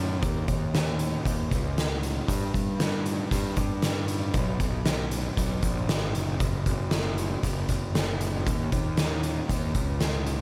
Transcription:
Already playing: F#2
0.23 D#2, kick, closed hi-hat
0.48 D#2, kick, closed hi-hat
0.74 snare, closed hi-hat
0.99 closed hi-hat
1.25 D#2, kick, closed hi-hat
1.51 C#2, kick, closed hi-hat
1.78 snare, closed hi-hat
2.03 closed hi-hat
2.28 G2, kick, closed hi-hat
2.54 G2, kick, closed hi-hat
2.80 snare, closed hi-hat
3.06 closed hi-hat
3.31 G2, kick, closed hi-hat
3.57 G2, kick, closed hi-hat
3.82 snare, closed hi-hat
4.08 closed hi-hat
4.34 B1, kick, closed hi-hat
4.60 B1, kick, closed hi-hat
4.85 snare, closed hi-hat
5.11 closed hi-hat
5.37 B1, kick, closed hi-hat
5.63 A#1, kick, closed hi-hat
5.89 G#1, snare, closed hi-hat
6.15 F#1, closed hi-hat
6.40 F#1, kick, closed hi-hat
6.66 F#1, kick, closed hi-hat
6.91 snare, closed hi-hat
7.18 closed hi-hat
7.43 F#1, kick, closed hi-hat
7.69 F#1, kick, closed hi-hat
7.95 snare, closed hi-hat
8.21 closed hi-hat
8.47 D#2, kick, closed hi-hat
8.72 D#2, kick, closed hi-hat
8.97 snare, closed hi-hat
9.23 closed hi-hat
9.49 D#2, kick, closed hi-hat
9.75 C#2, kick, closed hi-hat
10.00 snare, closed hi-hat
10.27 closed hi-hat

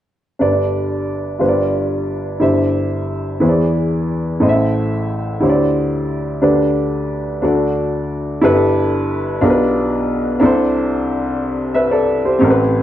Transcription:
0.39 G1 G2 D4 G4 B4 D5
1.39 G1 G2 F4 G4 B4 C5
1.48 D5
2.40 G1 G2 E4 G4 C5 E5
3.40 E2 E3 E4 G#4 B4 C5
3.49 D5
4.40 A1 A2 E4 A4 C5 D#5
4.49 E5
5.40 D2 D3 E4 G4 C5 C#5
5.49 D5
6.42 D2 D3 D4 G4 B4 D5
7.42 D2 D3 D4 F#4 A4 D5
8.41 G1 G2 E4 G4 A4 B4
9.41 B1 B2 D4 F4 G4 A#4
9.50 B4
10.40 C2 C3 D4 E4 A4
10.45 C5
11.74 B4 E5
11.91 A4 D5
12.25 G4 C5
12.39 A1 A2 C4 G4 A4
12.44 A#4
12.50 B4

